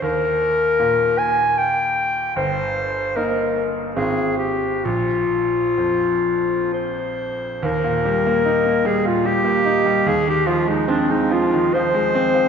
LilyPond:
<<
  \new Staff \with { instrumentName = "Clarinet" } { \time 3/4 \key ees \major \tempo 4 = 74 bes'4. aes''8 g''4 | c''4 bes'8. r16 aes'8 g'8 | f'2 c''4 | bes'4. aes'16 f'16 g'4 |
aes'16 g'16 f'16 ees'16 d'16 ees'16 f'8 c''4 | }
  \new Staff \with { instrumentName = "Grand piano" } { \clef bass \time 3/4 \key ees \major ees,4 bes,2 | g,,4 <bes ees'>4 <aes,, c' f'>4 | bes,,4 f,2 | ees,16 bes,16 g16 bes16 ees'16 bes16 g16 bes,16 g16 bes16 ees'16 g16 |
ees,16 ees16 f16 aes16 c'16 aes16 f16 ees16 f16 aes16 c'16 f16 | }
>>